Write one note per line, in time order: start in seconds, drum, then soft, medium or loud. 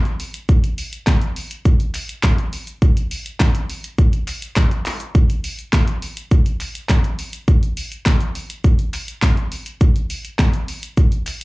0.05 closed hi-hat soft
0.05 shaker soft
0.20 open hi-hat medium
0.20 shaker medium
0.34 closed hi-hat medium
0.34 shaker medium
0.49 kick loud
0.49 shaker medium
0.64 closed hi-hat medium
0.64 shaker medium
0.78 open hi-hat medium
0.78 shaker medium
0.93 closed hi-hat medium
0.93 shaker medium
1.07 kick loud
1.07 snare medium
1.07 clap loud
1.07 shaker medium
1.22 closed hi-hat medium
1.22 shaker medium
1.36 open hi-hat medium
1.36 shaker medium
1.51 closed hi-hat medium
1.51 shaker medium
1.65 kick loud
1.65 shaker medium
1.80 closed hi-hat medium
1.80 shaker medium
1.94 clap medium
1.94 open hi-hat medium
1.94 shaker medium
2.09 closed hi-hat medium
2.09 shaker medium
2.23 kick loud
2.23 snare medium
2.23 clap loud
2.23 clap medium
2.23 shaker medium
2.38 closed hi-hat soft
2.38 shaker soft
2.53 open hi-hat medium
2.53 shaker medium
2.67 closed hi-hat medium
2.67 shaker medium
2.82 kick loud
2.82 shaker medium
2.97 closed hi-hat medium
2.97 shaker medium
3.11 open hi-hat medium
3.11 shaker medium
3.26 closed hi-hat medium
3.26 shaker medium
3.40 kick loud
3.40 snare medium
3.40 clap medium
3.40 clap loud
3.40 shaker medium
3.55 closed hi-hat medium
3.55 shaker medium
3.70 open hi-hat medium
3.70 shaker medium
3.84 closed hi-hat medium
3.84 shaker medium
3.98 kick loud
3.98 shaker medium
4.13 closed hi-hat medium
4.13 shaker medium
4.28 clap medium
4.28 open hi-hat medium
4.28 shaker medium
4.42 closed hi-hat medium
4.42 shaker medium
4.56 kick loud
4.56 snare medium
4.56 clap loud
4.56 clap medium
4.56 shaker medium
4.71 closed hi-hat soft
4.71 shaker soft
4.86 clap medium
4.86 open hi-hat medium
4.86 shaker medium
5.00 closed hi-hat medium
5.00 shaker medium
5.15 kick loud
5.15 shaker medium
5.30 closed hi-hat medium
5.30 shaker medium
5.44 open hi-hat medium
5.44 shaker medium
5.59 closed hi-hat medium
5.59 shaker medium
5.73 kick loud
5.73 snare medium
5.73 clap loud
5.73 clap medium
5.73 shaker medium
5.88 closed hi-hat medium
5.88 shaker medium
6.02 open hi-hat medium
6.02 shaker medium
6.17 closed hi-hat medium
6.17 shaker medium
6.31 kick loud
6.31 shaker medium
6.46 closed hi-hat medium
6.46 shaker medium
6.60 clap medium
6.60 open hi-hat medium
6.60 shaker medium
6.75 closed hi-hat medium
6.75 shaker medium
6.89 kick loud
6.89 snare medium
6.89 clap loud
6.89 clap medium
6.89 shaker medium
7.04 closed hi-hat soft
7.04 shaker soft
7.19 open hi-hat medium
7.19 shaker medium
7.33 closed hi-hat medium
7.33 shaker medium
7.48 kick loud
7.48 shaker medium
7.63 closed hi-hat medium
7.63 shaker medium
7.77 open hi-hat medium
7.77 shaker medium
7.92 closed hi-hat medium
7.92 shaker medium
8.06 kick loud
8.06 snare medium
8.06 clap loud
8.06 shaker medium
8.21 closed hi-hat medium
8.21 shaker medium
8.35 open hi-hat medium
8.35 shaker medium
8.50 closed hi-hat medium
8.50 shaker medium
8.64 kick loud
8.64 shaker medium
8.79 closed hi-hat medium
8.79 shaker medium
8.93 clap medium
8.93 open hi-hat medium
8.93 shaker medium
9.08 closed hi-hat medium
9.08 shaker medium
9.22 kick loud
9.22 snare medium
9.22 clap loud
9.22 clap medium
9.22 shaker medium
9.37 closed hi-hat soft
9.37 shaker soft
9.52 open hi-hat medium
9.52 shaker medium
9.66 closed hi-hat medium
9.66 shaker medium
9.81 kick loud
9.81 shaker medium
9.96 closed hi-hat medium
9.96 shaker medium
10.10 open hi-hat medium
10.10 shaker medium
10.25 closed hi-hat medium
10.25 shaker medium
10.39 kick loud
10.39 snare loud
10.39 clap loud
10.39 clap medium
10.39 shaker medium
10.54 closed hi-hat medium
10.54 shaker medium
10.68 open hi-hat medium
10.68 shaker medium
10.83 closed hi-hat medium
10.83 shaker medium
10.97 kick loud
10.97 shaker medium
11.12 closed hi-hat medium
11.12 shaker medium
11.26 clap medium
11.26 open hi-hat medium
11.26 shaker medium